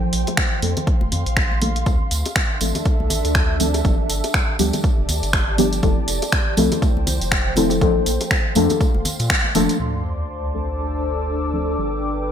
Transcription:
Already playing: synth stab F3 A3 A#3 D4 A4, ambient pad F3 C5 G5
0.10 analog synth bass A#1, ambient pad C6, open hi-hat
0.20 ambient pad F5
0.27 closed hi-hat, high bongo, high conga
0.37 finger snap, kick, closed hi-hat
0.62 analog synth bass F2, synth stab F3 A3 A#3 D4 A4, open hi-hat
0.77 closed hi-hat, high bongo, low conga
0.87 kick, closed hi-hat
1.01 analog synth bass F1, high conga
1.12 analog synth bass F2, open hi-hat, low conga
1.26 analog synth bass A#1, closed hi-hat
1.37 finger snap, kick, closed hi-hat
1.52 high conga
1.61 synth stab F3 A3 A#3 D4 A4, open hi-hat, low conga
1.76 closed hi-hat
1.86 analog synth bass D2, synth stab F3 A3 C4 D4 A4, ambient pad D4, kick, closed hi-hat, tambourine
1.94 ambient pad A4
2.01 ambient pad E5
2.11 analog synth bass D2, open hi-hat, tambourine
2.26 closed hi-hat, tambourine, high bongo
2.36 finger snap, kick, closed hi-hat, tambourine
2.61 analog synth bass A1, synth stab F3 A3 C4 D4 A4, open hi-hat, tambourine, high conga
2.75 closed hi-hat, tambourine, high bongo, low conga
2.85 kick, closed hi-hat, tambourine
3.00 analog synth bass C2, high conga
3.10 analog synth bass A1, open hi-hat, tambourine, low conga
3.25 analog synth bass D2, closed hi-hat, tambourine
3.35 finger snap, kick, closed hi-hat, tambourine
3.60 synth stab F3 A3 C4 D4 A4, open hi-hat, tambourine, low conga
3.74 closed hi-hat, tambourine, high bongo
3.85 analog synth bass G1, synth stab F3 G3 B3 D4 G4, ambient pad G4, kick, closed hi-hat, tambourine
4.09 analog synth bass G1, open hi-hat, tambourine
4.21 ambient pad D5, closed hi-hat, tambourine, high bongo
4.32 ambient pad A5, finger snap, kick, closed hi-hat, tambourine
4.59 analog synth bass D2, synth stab F3 G3 B3 D4 G4, open hi-hat, tambourine
4.73 closed hi-hat, tambourine, high bongo, low conga
4.84 kick, closed hi-hat, tambourine
4.98 analog synth bass F1
5.09 analog synth bass D2, open hi-hat, tambourine, low conga
5.23 analog synth bass G1, closed hi-hat, tambourine
5.33 finger snap, kick, closed hi-hat, tambourine
5.58 synth stab F3 G3 B3 D4 G4, open hi-hat, tambourine, low conga
5.72 closed hi-hat, tambourine
5.83 analog synth bass F1, synth stab F3 A3 C4 E4 A4, ambient pad F3, kick, closed hi-hat, tambourine
5.89 ambient pad C5
6.08 analog synth bass F1, open hi-hat, tambourine
6.20 ambient pad G5, closed hi-hat, tambourine, high bongo
6.32 finger snap, kick, closed hi-hat, tambourine
6.57 analog synth bass C2, synth stab F3 A3 C4 E4 A4, open hi-hat, tambourine, high conga
6.72 closed hi-hat, tambourine, high bongo, low conga
6.82 kick, closed hi-hat, tambourine
6.97 analog synth bass C2, high conga
7.07 analog synth bass C2, open hi-hat, tambourine, low conga
7.21 analog synth bass F1, closed hi-hat, tambourine
7.32 finger snap, kick, closed hi-hat, tambourine
7.56 synth stab F3 A3 C4 E4 A4, open hi-hat, tambourine, low conga
7.70 closed hi-hat, tambourine, high bongo
7.81 analog synth bass A#1, synth stab F3 A3 A#3 D4 A4, kick, closed hi-hat, tambourine
7.95 ambient pad F5
8.06 analog synth bass A#1, open hi-hat, tambourine
8.11 ambient pad C6
8.21 closed hi-hat, tambourine, high bongo
8.31 finger snap, kick, closed hi-hat, tambourine
8.55 analog synth bass F2, synth stab F3 A3 A#3 D4 A4, open hi-hat, tambourine, high conga
8.69 closed hi-hat, tambourine, high bongo, low conga
8.81 kick, closed hi-hat, tambourine
8.95 analog synth bass F1, high conga
9.05 open hi-hat, tambourine, low conga
9.19 analog synth bass A#2, closed hi-hat, tambourine
9.30 finger snap, kick, closed hi-hat, tambourine
9.44 high conga
9.55 analog synth bass F1, synth stab F3 A3 A#3 D4 A4, open hi-hat, tambourine, low conga
9.69 closed hi-hat, tambourine
9.80 analog synth bass D2, synth stab F3 A3 C4 D4 A4, ambient pad D4, analog synth pad C5 D5 A5 D6, sub drop
10.07 ambient pad A4
10.22 ambient pad E6
10.54 synth stab F3 A3 C4 D4 A4
11.53 synth stab F3 A3 C4 D4 A4
11.78 analog synth bass G1, synth stab F3 G3 B3 D4 G4, ambient pad G4, analog synth pad B4 G5
11.83 ambient pad D5

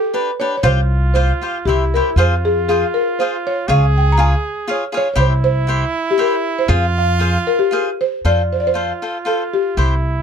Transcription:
Already playing: trumpet G4, marimba A4
0.14 cavaquinho D4 G4 B4 D5, marimba B4
0.40 cavaquinho D4 G4 B4 D5, marimba C#5
0.57 marimba C#5
0.63 upright bass C2, cavaquinho F4 G4 C5 F5, trumpet F4, marimba C5
1.14 cavaquinho F4 G4 C5 F5, marimba C5
1.42 cavaquinho F4 G4 C5 F5
1.65 upright bass C2, trumpet E4, cavaquinho E4 G4 C5 E5, marimba G4
1.94 cavaquinho E4 G4 C5 E5, marimba A#4
2.16 upright bass F2, trumpet F4, cavaquinho F4 G#4 C5 F5, marimba C5
2.45 marimba G#4
2.69 cavaquinho F4 G#4 C5 F5, marimba G#4
2.94 marimba A#4
3.19 cavaquinho F4 G#4 C5 F5, marimba C5
3.47 marimba C#5
3.68 upright bass C#2, cavaquinho F4 G#4 C#5 F5, trumpet G#4, marimba F5
3.98 marimba G5
4.12 marimba A#5
4.17 cavaquinho F4 G#4 C#5 F5, marimba G#5
4.67 cavaquinho F4 G#4 C#5 F5, marimba C#5
4.92 cavaquinho F4 G#4 C#5 F5
4.97 marimba C#5
5.14 upright bass C2, cavaquinho E4 G4 C5 E5, trumpet E4, marimba C#5
5.20 marimba C5
5.44 marimba C5
5.67 cavaquinho E4 G4 C5 E5
6.11 marimba G4
6.18 cavaquinho E4 G4 C5 E5, marimba A#4
6.59 marimba C5
6.68 upright bass F2, cavaquinho F4 G#4 C5 F5, trumpet F4
6.98 marimba F5
7.19 cavaquinho F4 G#4 C5 F5
7.47 marimba A#4
7.59 marimba G4
7.71 cavaquinho F4 G#4 C5 F5, marimba A#4
8.01 marimba C5
8.25 upright bass F2, cavaquinho F4 A4 C5 F5, trumpet F4, marimba D5
8.53 marimba C5
8.60 marimba D5
8.67 marimba C5
8.74 cavaquinho F4 A4 C5 F5
9.02 cavaquinho F4 A4 C5 F5
9.25 cavaquinho F4 A4 C5 F5, marimba A4
9.54 marimba G4
9.77 upright bass C2, cavaquinho E4 G4 C5 E5, trumpet E4

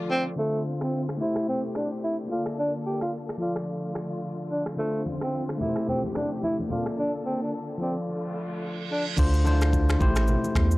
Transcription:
Already playing: string section D3 A3 F4, tine electric piano F3 F4 A4 D5
0.11 tenor saxophone C4
0.36 tine electric piano D3 D4 F4 C5, string section D3 C4 F4, tenor saxophone A3
0.81 tenor saxophone C4, finger snap, cross-stick
1.09 finger snap, cross-stick
1.17 string section C3 A3 G4, tine electric piano A3 E4 G4, tenor saxophone E4
1.22 tine electric piano C5
1.36 finger snap, cross-stick
1.48 tenor saxophone C4
1.75 tenor saxophone D4, finger snap, cross-stick
2.04 tenor saxophone E4
2.27 string section D3 A#3 A4, tine electric piano A#3 F4 A4, tenor saxophone F4
2.32 tine electric piano D5
2.46 finger snap, cross-stick
2.59 tenor saxophone D4
2.86 tenor saxophone G4
3.01 tenor saxophone F4, finger snap, cross-stick
3.29 finger snap, cross-stick
3.38 string section D3 A3 F4, tine electric piano F3 F4 A4, tenor saxophone F4
3.43 tine electric piano D5
3.56 finger snap, cross-stick
3.95 finger snap, cross-stick
4.51 tenor saxophone D4
4.66 finger snap, cross-stick
4.77 tine electric piano D3 D4 F4 C5, tenor saxophone A3, string section C4 F4, shaker
5.06 high conga, shaker
5.21 tenor saxophone C4, finger snap, cross-stick, shaker
5.33 shaker
5.49 finger snap, cross-stick
5.58 string section C3 A3 G4, tine electric piano A3 E4 G4, tenor saxophone E4, high conga, low conga, shaker
5.63 tine electric piano A#4
5.69 tine electric piano C5
5.76 finger snap, cross-stick
5.87 tenor saxophone C4, low conga, shaker
6.04 high conga, shaker
6.15 tenor saxophone D4, finger snap, cross-stick, high conga
6.31 shaker
6.43 tenor saxophone E4, high conga, shaker
6.59 high conga, shaker
6.68 string section D3 A#3 A4, tine electric piano A#3 F4 A4, tenor saxophone F4, high conga, low conga, shaker
6.73 tine electric piano D5
6.86 finger snap, cross-stick
6.99 tenor saxophone D4
7.26 tenor saxophone C4
7.42 tenor saxophone D4
7.78 tine electric piano F3 F4 A4, string section A3 F4, tenor saxophone C4
7.83 tine electric piano D5
8.08 reverse cymbal
8.91 tenor saxophone D4
9.17 analog synth bass D2, tine electric piano D3 D4 F4 C5, kick, crash, shaker
9.34 shaker
9.44 tine electric piano D3 D4 E4 C5, high conga, shaker
9.53 tine electric piano F4
9.61 finger snap, cross-stick, shaker
9.73 kick, shaker
9.89 finger snap, cross-stick, shaker
9.99 analog synth bass A1, tine electric piano A3 E4 G4 C5, kick, high conga, low conga, shaker
10.16 finger snap, cross-stick, shaker
10.28 low conga, shaker
10.44 high conga, shaker
10.55 analog synth bass E2, finger snap, kick, cross-stick, high conga, shaker
10.71 shaker

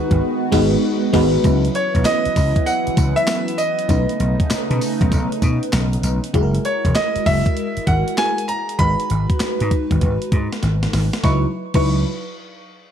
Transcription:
Already playing: analog synth pad D#3 G#3 B3 F#4, fm electric piano G#3 B3 D#4 F#4 B4, grand piano B4
0.11 slap bass G#1, kick, closed hi-hat
0.52 slap bass G#1, fm electric piano G#3 B3 D#4 F#4 B4, kick, snare, crash
1.13 slap bass G#1, fm electric piano G#3 B3 D#4 F#4 B4, kick, snare, crash
1.43 slap bass C#2, analog synth pad E3 F#3 B3 E4, fm electric piano F#3 C#4 E4 B4, kick, closed hi-hat, tambourine
1.65 closed hi-hat
1.75 grand piano C#5, closed hi-hat
1.95 slap bass B1, kick, closed hi-hat
2.05 grand piano D#5, snare, clap, closed hi-hat, tambourine
2.25 muted slap bass stroke, closed hi-hat
2.36 slap bass C#2, kick, open hi-hat, tambourine
2.56 kick, closed hi-hat
2.66 grand piano F#5, closed hi-hat, tambourine
2.87 muted slap bass stroke, closed hi-hat
2.97 slap bass C#2, kick, closed hi-hat, tambourine
3.16 grand piano E5, closed hi-hat
3.27 snare, clap, closed hi-hat, tambourine
3.48 closed hi-hat
3.58 grand piano D#5, closed hi-hat, tambourine
3.79 closed hi-hat
3.88 slap bass B1, analog synth pad C#3 A3 D#4, fm electric piano A3 C#4 D#4 B4, kick, closed hi-hat, tambourine
4.09 closed hi-hat
4.20 slap bass B1, closed hi-hat
4.40 kick, closed hi-hat
4.50 muted slap bass stroke, snare, clap, closed hi-hat, tambourine
4.70 slap bass B2, closed hi-hat
4.81 open hi-hat, tambourine
5.01 slap bass B1, kick, closed hi-hat
5.12 slap bass B1, kick, closed hi-hat, tambourine
5.32 closed hi-hat
5.42 slap bass B2, kick, closed hi-hat, tambourine
5.63 closed hi-hat
5.73 slap bass B1, snare, clap, closed hi-hat, tambourine
5.93 closed hi-hat
6.03 slap bass B1, closed hi-hat, tambourine
6.24 closed hi-hat
6.34 slap bass F#1, fm electric piano G#3 E4 F#4 G#4, kick, closed hi-hat
6.43 fm electric piano A#4
6.55 closed hi-hat
6.65 grand piano C#5, closed hi-hat
6.85 slap bass E1, kick, closed hi-hat
6.95 grand piano D#5, snare, clap, closed hi-hat
7.16 muted slap bass stroke, closed hi-hat
7.26 slap bass F#1, grand piano E5, kick, open hi-hat
7.46 kick, closed hi-hat
7.57 closed hi-hat
7.77 muted slap bass stroke, closed hi-hat
7.87 slap bass G#1, grand piano F#5, kick, closed hi-hat
8.08 closed hi-hat
8.18 fm electric piano G#3 E4 F#4 G#4, grand piano G#5, snare, clap, closed hi-hat
8.26 fm electric piano A#4
8.38 closed hi-hat
8.48 grand piano A#5, closed hi-hat
8.69 closed hi-hat
8.79 slap bass G#1, fm electric piano G#3 D#4 F#4 B4, grand piano B5, kick, closed hi-hat
9.00 closed hi-hat
9.10 slap bass G#1, closed hi-hat
9.30 kick, closed hi-hat
9.40 muted slap bass stroke, snare, clap, closed hi-hat
9.60 slap bass G#2, closed hi-hat
9.71 kick, closed hi-hat
9.91 slap bass G#1, kick, closed hi-hat
10.01 slap bass G#1, kick, closed hi-hat
10.22 closed hi-hat
10.32 slap bass G#2, kick, closed hi-hat
10.53 snare, closed hi-hat
10.63 slap bass G#1, snare, closed hi-hat
10.83 snare, closed hi-hat
10.93 slap bass G#1, snare, open hi-hat
11.13 snare, closed hi-hat
11.24 slap bass C#2, fm electric piano F#3 D#4 E4 B4, grand piano C#6, kick, snare
11.74 slap bass C#2, fm electric piano F#3 D#4 E4 B4, grand piano C#6, kick, crash

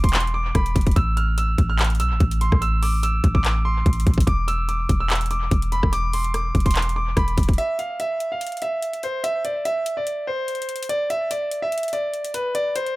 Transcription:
Already playing: 808-style bass E1
0.04 grand piano C6, kick, closed hi-hat
0.09 closed hi-hat
0.13 clap, closed hi-hat
0.20 closed hi-hat
0.27 closed hi-hat
0.34 grand piano D6
0.55 808-style bass E1, grand piano B5, kick, cross-stick, closed hi-hat
0.66 closed hi-hat
0.76 808-style bass E1, kick, closed hi-hat
0.81 closed hi-hat
0.87 kick, closed hi-hat
0.91 closed hi-hat
0.96 808-style bass A1, grand piano E6, kick, closed hi-hat
1.17 grand piano F6, closed hi-hat
1.38 grand piano E6, closed hi-hat
1.58 808-style bass A1, kick, closed hi-hat
1.70 grand piano F6
1.79 clap, closed hi-hat
1.85 closed hi-hat
1.90 closed hi-hat
1.95 closed hi-hat
2.00 808-style bass B1, grand piano E6, closed hi-hat
2.11 808-style bass A1
2.20 808-style bass A1, kick, closed hi-hat
2.31 closed hi-hat
2.41 grand piano C6, closed hi-hat
2.52 808-style bass A1, kick, cross-stick
2.62 grand piano E6, closed hi-hat
2.83 grand piano D6, open hi-hat
3.03 grand piano E6, closed hi-hat
3.24 808-style bass A1, kick, closed hi-hat
3.35 grand piano D6, kick
3.45 clap, closed hi-hat
3.65 grand piano C6
3.86 808-style bass A1, kick, closed hi-hat
3.93 closed hi-hat
4.00 closed hi-hat
4.07 808-style bass A1, kick, closed hi-hat
4.14 closed hi-hat
4.18 kick, closed hi-hat
4.27 808-style bass E1, grand piano D6, kick, closed hi-hat
4.48 grand piano E6, closed hi-hat
4.69 grand piano D6, closed hi-hat
4.89 808-style bass E1, kick, closed hi-hat
5.00 grand piano E6
5.10 clap, closed hi-hat
5.16 closed hi-hat
5.21 closed hi-hat
5.26 closed hi-hat
5.31 grand piano D6, closed hi-hat
5.51 808-style bass E1, kick, closed hi-hat
5.62 closed hi-hat
5.72 grand piano B5, closed hi-hat
5.83 808-style bass E1, kick, cross-stick
5.93 grand piano D6, closed hi-hat
6.13 grand piano C6, closed hi-hat, open hi-hat
6.24 closed hi-hat
6.34 grand piano D6, cross-stick, closed hi-hat
6.55 808-style bass E1, kick, closed hi-hat
6.60 closed hi-hat
6.66 grand piano C6, kick, closed hi-hat
6.71 closed hi-hat
6.75 clap
6.82 closed hi-hat
6.89 closed hi-hat
6.96 grand piano D6
7.17 808-style bass E1, grand piano B5, kick, cross-stick, closed hi-hat
7.28 closed hi-hat
7.38 808-style bass E1, kick, closed hi-hat
7.43 closed hi-hat
7.49 kick, closed hi-hat
7.53 closed hi-hat
7.58 grand piano E5, closed hi-hat
7.79 grand piano F5, closed hi-hat
8.00 grand piano E5, closed hi-hat
8.20 closed hi-hat
8.32 grand piano F5
8.41 closed hi-hat
8.47 closed hi-hat
8.52 closed hi-hat
8.57 closed hi-hat
8.62 grand piano E5, closed hi-hat
8.82 closed hi-hat
8.93 closed hi-hat
9.03 grand piano C5, closed hi-hat
9.24 grand piano E5, closed hi-hat
9.45 grand piano D5, closed hi-hat
9.65 grand piano E5, closed hi-hat
9.86 closed hi-hat
9.97 grand piano D5
10.07 closed hi-hat
10.27 grand piano C5
10.48 closed hi-hat
10.55 closed hi-hat
10.62 closed hi-hat
10.69 closed hi-hat
10.76 closed hi-hat
10.83 closed hi-hat
10.89 grand piano D5, closed hi-hat
11.10 grand piano E5, closed hi-hat
11.31 grand piano D5, closed hi-hat
11.51 closed hi-hat
11.62 grand piano E5
11.72 closed hi-hat
11.78 closed hi-hat
11.83 closed hi-hat
11.88 closed hi-hat
11.93 grand piano D5, closed hi-hat
12.14 closed hi-hat
12.25 closed hi-hat
12.34 grand piano B4, closed hi-hat
12.55 grand piano D5, closed hi-hat
12.76 grand piano C5, closed hi-hat
12.87 closed hi-hat

